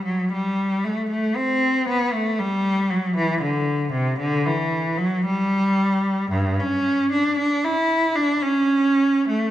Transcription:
cello
0.05 F#3
0.33 G3
0.84 A3
1.10 A3
1.35 C4
1.89 B3
2.13 A3
2.39 G3
2.90 F#3
3.17 E3
3.42 D3
3.93 C3
4.19 D3
4.46 E3
4.97 F#3
5.25 G3
6.31 G2
6.60 C#4
7.12 D4
7.39 D4
7.64 E4
8.16 D4
8.42 C#4
9.28 A3

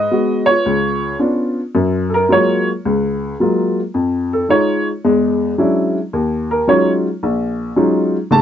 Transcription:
upright piano
Already playing: B4 D#5
0.11 G#3 B3 F#4
0.46 F4 C#5
0.66 C#2
1.19 B3 C#4 D4 F4
1.75 F#2
2.09 A4
2.14 A#4
2.29 F#3 G#3 A#3 F4 C#5
2.85 C#2
3.40 F#3 G#3 A#3 F4
3.94 F2
4.33 A4
4.49 G#3 D#4 F4 C#5
5.04 E2 G#3
5.58 F#3 G#3 C#4 D4 E4
6.13 D#2
6.51 A#4
6.67 F#3 G#3 C#4 D#4 F4 C#5
7.23 A#1
7.76 F#3 G#3 C#4 D#4 F4
8.31 A1 C#3 A5

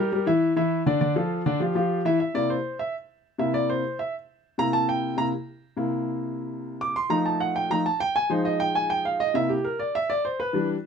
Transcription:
grand piano
0.12 G3 G4 A#4
0.27 E3 E4 E5
0.56 E3 E4 E5
0.86 D3 D4 D5
1.01 D3 D4 D5
1.16 F3 F4 A4
1.46 D3 D4 D5
1.60 F3 F4 G4
1.75 F3 F4 G4
2.05 E3 E4 E5
2.20 E5
2.34 C3 A#3 E4 D5
2.50 C5
2.79 E5
3.38 C3 A#3 E4 E5
3.54 D5
3.70 C5
3.99 E5
4.58 C3 A#3 E4 A#5
4.73 A5
4.89 G5
5.17 C3 A#3 E4 A#5
5.77 C3 A#3 E4
6.81 D6
6.96 C6
7.10 F3 A3 D#4 A#5
7.26 A5
7.40 F#5
7.56 G5
7.70 F3 A3 D#4 A#5
7.86 A5
8.00 G5
8.16 G#5
8.30 F3 G#3 D#4 C5
8.45 D#5
8.60 G5
8.75 G#5
8.90 G5
9.05 F5
9.20 D#5
9.34 C3 A#3 E4 E5
9.49 G4
9.64 A#4
9.80 D5
9.95 E5
10.10 D5
10.25 C5
10.40 B4
10.53 E3 G3 D4

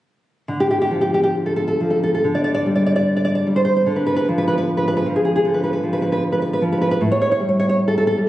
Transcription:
nylon-string guitar
0.48 D3
0.60 G4
0.71 G4
0.82 G4
0.91 F3
1.01 G4
1.14 G4
1.23 G4
1.46 A4
1.56 A4
1.68 A4
1.80 F3
1.91 A4
2.03 A4
2.15 A4
2.24 D3
2.35 D5
2.44 D5
2.55 D5
2.66 G3
2.76 D5
2.86 D5
2.96 D5
3.17 D5
3.25 D5
3.35 D5
3.47 G3
3.56 C5
3.65 C5
3.77 C5
3.86 D3
3.96 B4
4.07 B4
4.16 B4
4.29 F3
4.38 B4
4.48 B4
4.58 B4
4.77 B4
4.88 B4
4.97 B4
5.06 F3
5.16 G#4
5.25 G#4
5.36 G#4
5.45 D3
5.54 B4
5.64 B4
5.73 B4
5.83 F3
5.93 B4
6.02 B4
6.12 B4
6.32 B4
6.42 B4
6.53 B4
6.62 F3
6.72 B4
6.82 B4
6.91 B4
7.01 A2
7.12 C#5
7.22 C#5
7.32 C#5
7.40 G3
7.49 C#5
7.60 C#5
7.69 C#5
7.88 A4
7.98 A4
8.07 A4
8.18 G3

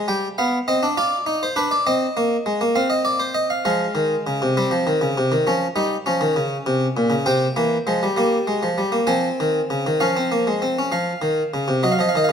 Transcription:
harpsichord
0.08 G3 G5
0.38 B3 F5
0.68 C4 D#5
0.83 D4
0.97 F4 D5
1.26 D#4
1.43 C5
1.56 D4 B4
1.71 D5
1.87 C4 D#5
2.17 A#3
2.46 G#3
2.61 A#3
2.76 C4 F5
2.90 D#5
3.05 D5
3.20 C5
3.35 D#5
3.50 F5
3.65 F3 G#3 F5
3.95 D#3
4.27 C#3
4.42 C3
4.57 G3 C4
4.71 F3
4.87 D#3
5.01 C#3
5.18 C3
5.32 D#3
5.47 F3 C#4
5.76 G3 D#4
6.06 F3 C#4
6.21 D#3
6.36 C#3
6.66 C3
6.97 A#2
7.10 C#3
7.26 C3 C4 G5
7.56 E3 A#3
7.87 F3 G#3
8.03 G3
8.17 G3 A#3
8.47 G#3
8.63 F3
8.78 G3
8.92 A#3
9.07 F3 C4 G#5
9.40 D#3
9.70 C#3
9.87 D#3
10.00 F3 C#4 F5
10.17 C4
10.32 A#3
10.47 G#3
10.62 C4
10.79 C#4
10.92 F3 F5
11.22 D#3
11.54 C#3
11.68 C3
11.83 F#3 D#5
11.92 F5
11.99 F3 D#5
12.09 F5
12.15 D#3 D#5
12.24 F5
12.29 C#3

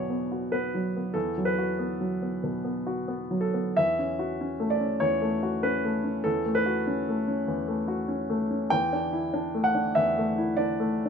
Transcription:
grand piano
Already playing: E2 B2 F#3 B3 F#4 C#5 D5 E5
0.10 B3
0.32 F#4
0.52 B3 B4
0.74 F#3
0.96 B3
1.14 E2 A4
1.38 F#3
1.45 B4
1.58 F#4
1.79 B3
2.01 F#3
2.22 B3
2.43 B2
2.64 B3
2.87 F#4
3.08 B3
3.31 F#3
3.41 A4
3.54 B3
3.77 E2 E5
3.99 C#4
4.19 F#4
4.41 C#4
4.60 A3
4.70 D5
4.81 C#4
5.00 E2 C#5
5.22 A3
5.43 F#4
5.63 C#4 B4
5.85 A3
6.04 C#4
6.24 E2 A4
6.46 A3
6.55 B4
6.66 F#4
6.87 C#4
7.09 A3
7.28 C#4
7.48 E2
7.68 A3
7.88 F#4
8.08 C#4
8.30 A3
8.51 C#4
8.70 E2 G5
8.93 D4
9.13 E4
9.34 D4
9.55 A3
9.64 F#5
9.75 D4
9.95 E2 E5
10.18 A3
10.38 E4
10.57 D4 D5
10.80 A3
11.05 D4

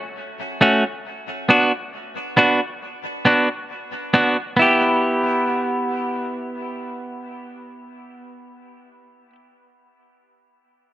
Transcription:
clean electric guitar
0.61 A3 C#4 F#4
1.49 B3 D4 F#4
2.37 B3 D4 F#4
3.25 B3 D4 F#4
4.14 B3 D4 F#4
4.57 B3 E4
4.62 G4

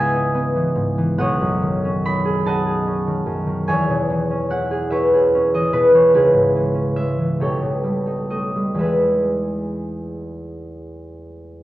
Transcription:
harp
Already playing: C#2 G#2 E3 B3 D#4 E4 G#4 B4 D#5 E5 F#5 G#5
0.15 D#4
0.34 B3
0.56 E3
0.75 G#2
0.98 E3
1.18 B1 C#5 D#5 F#5
1.41 F#2
1.62 D#3
1.84 C#4
2.05 D#4 B5
2.25 G#4
2.46 D#4 D#5 F#5 A5
2.66 G#4
2.87 C#4
3.07 D#3
3.26 F#2
3.47 D#3
3.68 E2 C#5 E5 G#5
3.89 B2
4.10 E3
4.31 C#4
4.50 E4 F#5
4.71 G#4
4.90 E4 B4 C#5 E5
5.14 G#4
5.35 C#4
5.54 E3 D#5
5.73 B2 B4
5.94 E3 C#5
6.14 C#2 E4 G#4 B4
6.33 G#2
6.55 E3
6.74 C#4
6.96 G#3 E5
7.19 E3
7.40 B1 G4 A4 C#5
7.61 B2
7.84 G3
8.06 D#4
8.30 A3 D#5
8.56 G3
8.75 E2 E3 G#3
8.79 D#4 G#4 B4 E5

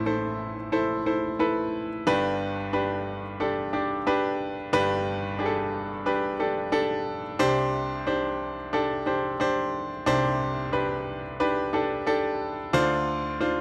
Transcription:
grand piano
Already playing: A1 A2 E4 A4 B4 C5 D5
0.06 E4 A4 C5
0.72 E4 A4 C5
1.06 E4 A4 C5
1.39 E4 A4 B4
2.07 G1 G2 D4 G4 B4
2.73 D4 G4 B4
3.40 D4 G4 A4
3.73 D4 G4 D5
4.07 D4 G4 B4
4.73 G1 G2 D4 G4 B4
5.39 D4 G4 G#4
5.46 A4
6.06 D4 G4 B4
6.40 D4 G4 A4
6.72 D4 G4 A4
7.39 C2 C3 D4 G4 C5
8.07 D4 G4 C5
8.73 D4 G4 A4
9.06 D4 G4 C5
9.40 D4 G4 C5
10.06 C2 C3 D4 G4 C5
10.72 D4 G4 B4
11.40 D4 G4 B4
11.73 D4 G4 A4
12.06 D4 G4 A4
12.73 D2 D3 D4 F4 C5
13.41 D4 F4 C5

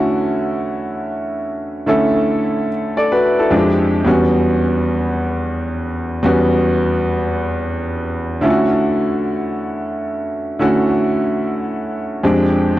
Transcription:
grand piano
Already playing: D3 A3 C#4 E4 F#4
1.86 D3 A3 C#4 E4 A4
2.97 A4 D5
3.12 F#4 B4
3.39 E4 A4
3.50 F2 G#3 C4 D4 F4
3.58 G4
4.05 E2 G3 B3 C#4 F#4
6.23 E2 G3 B3 C#4 F#4
8.41 D3 A3 C#4 E4 F4
8.50 F#4
10.59 D3 A3 C#4 E4 F#4
12.24 F2 G#3 C4 D4 G4

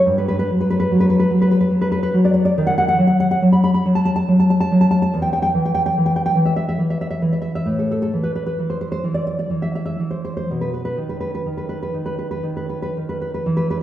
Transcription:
nylon-string guitar
0.06 G2
0.18 B4
0.28 B4
0.39 B4
0.50 F#3
0.61 B4
0.70 B4
0.80 B4
0.91 F#3
1.00 B4
1.10 B4
1.19 B4
1.31 F#3
1.42 B4
1.51 B4
1.61 B4
1.71 F#3
1.81 B4
1.92 B4
2.03 B4
2.14 F#3
2.25 D5
2.34 D5
2.45 D5
2.58 D#3
2.67 F#5
2.78 F#5
2.88 F#5
2.98 F#3
3.07 F#5
3.20 F#5
3.31 F#5
3.42 F#3
3.53 B5
3.64 B5
3.74 B5
3.86 F#3
3.95 A5
4.05 A5
4.16 A5
4.28 F#3
4.40 A5
4.50 A5
4.60 A5
4.71 F#3
4.81 A5
4.91 A5
5.02 A5
5.14 E2
5.22 G5
5.33 G5
5.42 G5
5.54 E3
5.65 G5
5.75 G5
5.86 G5
5.98 E3
6.06 G5
6.16 G5
6.26 G5
6.35 E3
6.45 E5
6.56 E5
6.69 E5
6.78 E3
6.90 E5
7.01 E5
7.10 E5
7.22 E3
7.33 E5
7.42 E5
7.55 E5
7.66 A2
7.79 A4
7.91 A4
8.02 A4
8.13 E3
8.23 B4
8.36 B4
8.46 B4
8.59 E3
8.70 C5
8.81 C5
8.92 C5
9.04 E3
9.14 D5
9.27 D5
9.39 D5
9.50 E3
9.62 E5
9.75 E5
9.86 E5
10.00 E3
10.11 C5
10.25 C5
10.37 C5
10.51 B2
10.61 B4
10.74 B4
10.85 B4
10.97 D#3
11.09 B4
11.21 B4
11.35 B4
11.46 D#3
11.57 B4
11.69 B4
11.83 B4
11.94 D#3
12.06 B4
12.19 B4
12.31 B4
12.43 D#3
12.57 B4
12.69 B4
12.82 B4
12.97 D#3
13.09 B4
13.22 B4
13.34 B4
13.46 E3
13.57 B4
13.70 B4

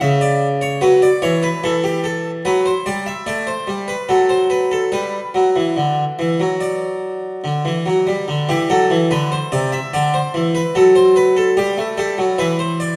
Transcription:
harpsichord
0.01 C#3 E5
0.21 D5
0.61 C#5
0.81 F#3 B4
1.02 D5
1.22 E3 C#5
1.43 B4
1.64 E3 A4
1.84 G4
2.04 A4
2.45 F#3 B4
2.66 C5
2.86 G3 D5
3.06 E5
3.26 A3 D5
3.47 C5
3.67 G3
3.88 B4
4.09 F#3 A4
4.29 C5
4.50 B4
4.71 A4
4.92 G3 B4
5.34 F#3
5.56 E3
5.76 D3
6.19 E3
6.40 F#3
6.61 D5
7.44 D3
7.65 E3
7.86 F#3
8.07 G3
8.28 D3
8.49 E3 G4
8.70 F#3 A4
8.90 E3
9.11 D3 B4
9.32 C5
9.52 C3 D5
9.72 E5
9.93 D3 D5
10.14 C5
10.34 E3
10.55 B4
10.75 F#3 A4
10.95 C5
11.16 B4
11.37 A4
11.57 G3 G4
11.78 A3
11.97 G3 A4
12.18 F#3
12.38 E3 B4
12.59 C5
12.80 D5

